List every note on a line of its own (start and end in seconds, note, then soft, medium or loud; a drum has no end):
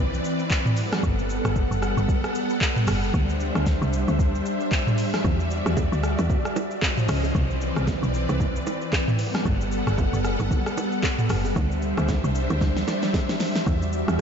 0.00 0.21 C2 loud
0.00 0.75 E3 medium
0.00 0.75 C4 medium
0.00 0.75 B4 medium
0.00 0.75 D5 medium
0.14 shaker medium
0.25 shaker loud
0.39 shaker soft
0.50 kick loud
0.50 clap loud
0.50 shaker medium
0.66 mid tom loud
0.66 shaker soft
0.77 6.78 G3 medium
0.77 3.12 B3 medium
0.77 3.12 A4 medium
0.77 3.12 F#5 medium
0.77 open hi-hat medium
0.77 shaker medium
0.93 cross-stick loud
0.93 snare medium
0.93 shaker medium
1.03 1.41 G1 loud
1.03 kick loud
1.03 shaker medium
1.19 shaker medium
1.30 shaker medium
1.45 1.69 G1 loud
1.45 cross-stick medium
1.45 shaker medium
1.56 kick medium
1.56 shaker medium
1.71 1.95 F#1 medium
1.71 shaker medium
1.82 cross-stick medium
1.82 shaker medium
1.97 2.07 G1 loud
1.97 shaker medium
2.09 kick loud
2.09 shaker medium
2.24 cross-stick medium
2.24 shaker medium
2.35 shaker loud
2.50 shaker medium
2.61 kick loud
2.61 clap loud
2.61 shaker medium
2.76 mid tom loud
2.76 shaker soft
2.87 3.11 F#1 medium
2.87 cross-stick loud
2.87 open hi-hat medium
2.87 shaker loud
3.03 shaker medium
3.14 3.51 D2 loud
3.14 5.22 D4 medium
3.14 5.22 C5 medium
3.14 6.79 E5 medium
3.14 kick loud
3.14 shaker medium
3.29 shaker medium
3.40 shaker medium
3.55 3.79 D2 loud
3.55 cross-stick medium
3.55 shaker medium
3.66 kick medium
3.66 snare medium
3.66 shaker medium
3.82 4.05 C2 loud
3.82 shaker medium
3.93 shaker medium
4.08 4.42 D2 loud
4.08 shaker medium
4.19 kick loud
4.19 shaker medium
4.35 shaker medium
4.46 shaker loud
4.60 shaker soft
4.72 kick loud
4.72 clap loud
4.72 shaker medium
4.87 mid tom medium
4.87 shaker soft
4.98 open hi-hat medium
4.98 shaker loud
5.14 cross-stick loud
5.14 snare medium
5.14 shaker medium
5.24 5.62 E2 loud
5.24 6.81 F#4 medium
5.24 6.81 D5 medium
5.24 kick loud
5.24 low conga medium
5.24 shaker medium
5.40 shaker medium
5.51 shaker medium
5.66 5.89 E2 loud
5.66 cross-stick medium
5.66 shaker medium
5.77 kick medium
5.77 high bongo medium
5.77 low conga medium
5.77 shaker medium
5.92 6.16 D2 loud
5.92 shaker medium
6.03 cross-stick medium
6.03 shaker medium
6.19 6.29 E2 loud
6.19 high bongo medium
6.19 low bongo medium
6.19 shaker medium
6.30 kick loud
6.30 low conga medium
6.30 shaker medium
6.45 cross-stick medium
6.45 shaker medium
6.56 low bongo medium
6.56 shaker loud
6.71 shaker soft
6.82 7.35 F3 medium
6.82 7.35 C#4 medium
6.82 7.35 C5 medium
6.82 7.35 D#5 medium
6.82 kick medium
6.82 clap loud
6.82 high bongo medium
6.82 shaker medium
6.98 mid tom medium
6.98 shaker soft
7.08 7.32 C#2 loud
7.08 cross-stick loud
7.08 open hi-hat medium
7.08 shaker loud
7.23 high bongo medium
7.23 shaker medium
7.35 7.72 C2 loud
7.35 9.17 E3 medium
7.35 9.17 C4 medium
7.35 9.17 B4 medium
7.35 9.17 D5 medium
7.35 kick loud
7.35 low conga medium
7.35 shaker medium
7.51 shaker medium
7.61 shaker medium
7.76 8.00 C2 loud
7.76 cross-stick medium
7.76 shaker medium
7.87 kick loud
7.87 snare medium
7.87 high bongo medium
7.87 low conga medium
7.87 shaker medium
8.03 8.26 B1 loud
8.03 shaker medium
8.14 shaker medium
8.29 8.63 C2 loud
8.29 high bongo medium
8.29 low bongo medium
8.29 shaker medium
8.40 kick loud
8.40 low conga medium
8.40 shaker medium
8.56 shaker medium
8.67 low bongo medium
8.67 shaker loud
8.81 shaker medium
8.93 kick loud
8.93 clap loud
8.93 high bongo medium
8.93 shaker medium
9.08 mid tom loud
9.08 shaker soft
9.19 14.21 G3 medium
9.19 11.54 B3 medium
9.19 11.54 A4 medium
9.19 11.54 F#5 medium
9.19 open hi-hat medium
9.19 shaker loud
9.34 cross-stick loud
9.34 snare medium
9.34 high bongo medium
9.34 shaker medium
9.46 9.83 G1 loud
9.46 kick loud
9.46 low conga medium
9.46 shaker medium
9.61 shaker medium
9.72 shaker medium
9.87 10.11 G1 loud
9.87 cross-stick medium
9.87 shaker medium
9.98 kick loud
9.98 high bongo medium
9.98 low conga medium
9.98 shaker medium
10.13 10.37 F#1 medium
10.13 shaker medium
10.24 cross-stick medium
10.24 shaker medium
10.40 10.50 G1 loud
10.40 high bongo medium
10.40 low bongo medium
10.40 shaker medium
10.51 kick loud
10.51 low conga medium
10.51 shaker medium
10.66 cross-stick medium
10.66 shaker medium
10.77 low bongo medium
10.77 shaker loud
10.92 shaker medium
11.03 kick loud
11.03 clap loud
11.03 high bongo medium
11.03 shaker medium
11.19 mid tom medium
11.19 shaker soft
11.29 11.53 F#1 medium
11.29 cross-stick loud
11.29 open hi-hat medium
11.29 shaker loud
11.45 high bongo medium
11.45 shaker medium
11.56 11.93 D2 loud
11.56 13.65 D4 medium
11.56 13.65 C5 medium
11.56 14.21 E5 medium
11.56 kick loud
11.56 low conga medium
11.56 shaker medium
11.71 shaker medium
11.82 shaker medium
11.97 12.21 D2 loud
11.97 cross-stick medium
11.97 shaker medium
12.08 kick medium
12.08 snare medium
12.08 high bongo medium
12.08 low conga medium
12.08 shaker medium
12.24 12.48 C2 loud
12.24 shaker medium
12.35 shaker medium
12.50 12.84 D2 loud
12.50 high bongo medium
12.50 low bongo medium
12.50 shaker medium
12.61 kick loud
12.61 snare medium
12.61 low conga medium
12.61 shaker medium
12.77 snare medium
12.77 shaker medium
12.88 snare medium
12.88 low bongo medium
12.88 shaker loud
13.02 snare medium
13.02 shaker medium
13.14 kick loud
13.14 snare medium
13.14 high bongo medium
13.14 shaker medium
13.29 snare medium
13.29 shaker soft
13.40 snare loud
13.40 open hi-hat medium
13.40 shaker loud
13.55 snare loud
13.55 high bongo medium
13.55 shaker medium
13.67 14.04 E2 loud
13.67 14.21 F#4 medium
13.67 14.21 D5 medium
13.67 kick loud
13.67 low conga medium
13.67 shaker medium
13.82 shaker medium
13.93 shaker medium
14.08 14.21 E2 loud
14.08 cross-stick medium
14.08 shaker medium